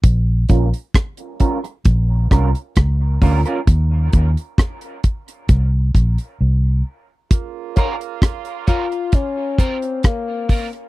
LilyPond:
<<
  \new Staff \with { instrumentName = "Clean electric guitar" } { \time 4/4 \key bes \minor \tempo 4 = 66 r8 <des' f' bes'>16 r8. <des' f' bes'>16 r8. <des' f' bes'>16 r8. <des' f' bes'>16 <des' f' bes'>16 | r1 | r8 <des' f' bes'>16 r8. <des' f' bes'>16 r8. <des' f' bes'>16 r8. <des' f' bes'>16 r16 | }
  \new Staff \with { instrumentName = "Reed electric piano" } { \time 4/4 \key bes \minor r1 | r1 | r8 <des' f' bes'>16 r8. <des' f' bes'>16 r8. <des' f' bes'>16 <f' bes'>16 r8 <des' f' bes'>16 r16 | }
  \new Staff \with { instrumentName = "Tenor saxophone" } { \time 4/4 \key bes \minor r1 | r1 | r4. f'8 des'8 c'8 bes8. r16 | }
  \new Staff \with { instrumentName = "Horn section" } { \time 4/4 \key bes \minor r1 | r1 | <des bes f'>2.~ <des bes f'>8 r8 | }
  \new Staff \with { instrumentName = "Fingered electric bass" } { \clef bass \time 4/4 \key bes \minor bes,,8 bes,,16 r4 r16 bes,,8 c,16 r16 des,8 d,16 r16 | ees,8 ees,16 r4 r16 c,8 bes,,16 r16 c,8 r8 | r1 | }
  \new DrumStaff \with { instrumentName = "Drums" } \drummode { \time 4/4 <hh bd>8 <hh bd>16 hh16 <hh bd ss>16 hh16 <hh bd>16 hh16 <hh bd>8 <hh bd ss>16 hh16 <hh bd ss>8 <hho bd>16 hh16 | <hh bd>8 <hh bd>16 hh16 <hh bd ss>16 hh16 <hh bd>16 hh16 <hh bd>8 <hh bd>16 hh16 r4 | <hh bd>8 <hh bd>16 hh16 <hh bd ss>16 hh16 <hh bd>16 hh16 <hh bd>8 <hh bd>16 hh16 <hh bd ss>8 <hho bd>16 hh16 | }
>>